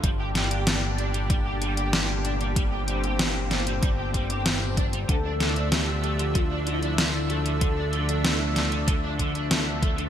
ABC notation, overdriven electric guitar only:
X:1
M:4/4
L:1/16
Q:1/4=95
K:Dm
V:1 name="Overdriven electric guitar"
G, G G, G D z D G, G, G G, G D z D G, | G, G G, G D z D G, G, G G, G D z D G, | D, D D, D A, z A, D, D, D D, D A, z A, D, | D, D D, D A, z A, D, D, D D, D A, z A, D, |]